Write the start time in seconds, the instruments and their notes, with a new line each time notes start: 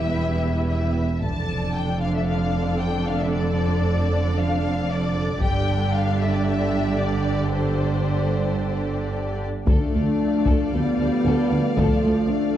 Already playing: double bass section E1, cello section E2, viola section G3 E4, violin section G4 B4 E5
0.70 violin section E5
1.22 double bass section F1, cello section F2, viola section D3 D4, violin section A4 D5 A5, taiko
1.75 violin section G5
2.01 violin section F5
2.15 violin section E5
2.27 violin section F5
2.81 violin section G5
3.07 violin section F5
3.19 violin section E5
3.32 violin section D5
4.37 violin section F5
4.91 violin section D5
5.40 double bass section G1, cello section G2, viola section D3 D4, violin section G4 D5 G5, taiko
5.94 violin section F5
6.20 violin section E5
6.33 violin section D5
6.45 violin section E5
7.00 violin section D5
7.53 violin section C5
9.67 tuba D2, double bass section D2, cello section D2, trombone section F3 A3, viola section A3, french horn section D4, violin section A4 D5 F5, taiko
9.93 tuba D2, double bass section D2, cello section D2, violin section A4
10.46 tuba D2, cello section D2, double bass section D2, violin section A4, taiko
10.72 tuba D2, cello section D2, double bass section D2, viola section G3, french horn section B3, violin section A4
10.99 tuba D2, cello section D2, double bass section D2, violin section A4
11.24 tuba D2, cello section D2, double bass section D2, violin section A4
11.51 tuba D2, cello section D2, double bass section D2, violin section A4
11.77 tuba D2, cello section D2, double bass section D2, viola section F3, french horn section A3, violin section A4, taiko
12.04 tuba D2, cello section D2, double bass section D2, violin section A4
12.29 viola section A3, french horn section D4